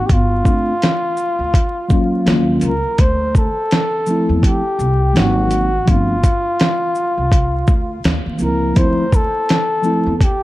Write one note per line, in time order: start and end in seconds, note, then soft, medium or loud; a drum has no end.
0.00 0.10 F#4 medium
0.06 0.40 G1 loud
0.06 0.14 G4 medium
0.06 kick loud
0.06 closed hi-hat medium
0.12 2.38 F4 loud
0.44 0.72 A3 medium
0.44 0.73 C4 medium
0.44 0.73 D4 medium
0.44 0.74 F4 medium
0.44 kick medium
0.44 shaker medium
0.82 snare medium
0.82 closed hi-hat medium
1.17 shaker soft
1.39 1.51 D2 medium
1.54 kick medium
1.54 closed hi-hat medium
1.88 2.23 F#3 medium
1.88 2.25 A#3 medium
1.88 2.26 C#4 medium
1.88 kick medium
1.88 shaker soft
1.93 2.28 F4 medium
2.25 2.56 D#2 loud
2.25 2.70 F#3 medium
2.25 2.71 A#3 medium
2.25 2.71 C#4 medium
2.25 snare loud
2.25 closed hi-hat medium
2.29 2.72 F4 medium
2.61 2.80 C#2 medium
2.61 3.02 A#4 medium
2.61 closed hi-hat soft
2.61 shaker soft
2.98 3.47 D2 loud
2.98 3.36 C5 medium
2.98 kick loud
2.98 closed hi-hat medium
3.35 4.40 A4 loud
3.35 kick medium
3.35 shaker medium
3.71 snare medium
3.71 closed hi-hat medium
4.06 4.60 F3 medium
4.06 4.61 A3 medium
4.06 4.61 C4 medium
4.06 shaker soft
4.11 4.62 E4 medium
4.29 4.41 E2 medium
4.43 5.19 G4 medium
4.43 kick medium
4.43 closed hi-hat loud
4.79 5.09 C2 medium
4.79 shaker soft
5.13 5.76 G#1 loud
5.13 5.67 F#3 medium
5.13 5.68 A#3 medium
5.13 5.69 C4 medium
5.13 snare loud
5.13 closed hi-hat medium
5.17 5.70 D#4 medium
5.17 5.92 F#4 loud
5.51 closed hi-hat medium
5.51 shaker soft
5.85 6.18 G1 medium
5.85 6.14 F3 medium
5.85 6.15 A3 medium
5.85 6.15 C4 medium
5.85 kick loud
5.85 closed hi-hat medium
5.90 6.16 D4 medium
5.90 8.16 F4 loud
6.24 kick medium
6.24 closed hi-hat medium
6.24 shaker medium
6.60 snare loud
6.60 closed hi-hat medium
6.95 shaker soft
7.17 7.60 C2 medium
7.32 kick medium
7.32 closed hi-hat medium
7.67 7.98 D2 medium
7.67 kick medium
7.67 shaker soft
8.04 8.22 D#2 loud
8.04 snare loud
8.04 closed hi-hat medium
8.26 8.38 D#2 medium
8.38 8.71 C#2 medium
8.38 8.73 F3 medium
8.38 8.84 A#3 medium
8.38 8.76 C4 medium
8.38 8.79 A#4 medium
8.38 shaker soft
8.42 8.78 E4 medium
8.74 9.25 D2 medium
8.74 9.03 F3 medium
8.74 9.03 A3 medium
8.74 9.04 C4 medium
8.74 9.17 C5 loud
8.74 kick loud
8.74 closed hi-hat medium
8.79 9.05 E4 medium
9.12 10.17 A4 loud
9.12 kick medium
9.12 shaker medium
9.49 snare medium
9.49 closed hi-hat medium
9.82 10.11 F3 medium
9.82 10.12 A3 medium
9.82 10.12 C4 medium
9.82 10.13 E4 medium
9.82 shaker soft
10.06 10.19 E2 medium
10.17 10.25 A4 medium
10.17 kick medium
10.21 10.43 G4 medium
10.21 closed hi-hat medium